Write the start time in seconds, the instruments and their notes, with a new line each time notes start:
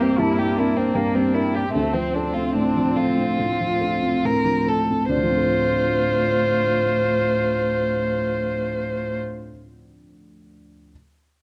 Already playing: felt piano C2 G2 G3 A#4 C5 E5, viola A#3, cello G4
0.00 felt piano C4, marimba C4, violin C4
0.18 felt piano G2 A5, cello E4, violin E4, marimba G4
0.38 felt piano G3, violin G4
0.56 marimba C4, cello D4, violin E4, felt piano A#4
0.76 felt piano C4, violin C4, marimba A#4
0.94 felt piano G2 G5, violin A#3, marimba G4
1.14 felt piano G3, marimba C4, violin C4
1.34 violin E4, marimba A#4, felt piano A#4
1.53 felt piano C4, marimba G4, violin G4
1.70 violin A3, cello C4, viola C4, marimba D4, felt piano E5
1.75 felt piano D2
1.93 felt piano F3, violin C4
2.14 violin D4, felt piano A4
2.33 felt piano C4, violin F4, marimba A4
2.54 felt piano A2 D5, marimba D4, violin D4
2.76 felt piano F3, marimba F4
2.96 violin F4, felt piano A4, marimba A4
3.17 felt piano C4, marimba D4
3.38 felt piano A2, marimba A4
3.60 felt piano F3
3.80 marimba D4, felt piano A4
4.02 felt piano C4, marimba C5
4.24 felt piano A2, marimba A4, violin A#4
4.45 felt piano F3, marimba D4
4.66 felt piano A4, violin A4, marimba C5
4.88 felt piano C4, marimba A4
5.08 felt piano D2 D5, cello A2, viola F4, violin C5
5.16 felt piano D3
5.23 felt piano F3
5.30 felt piano C4
5.37 felt piano A4
5.44 felt piano C5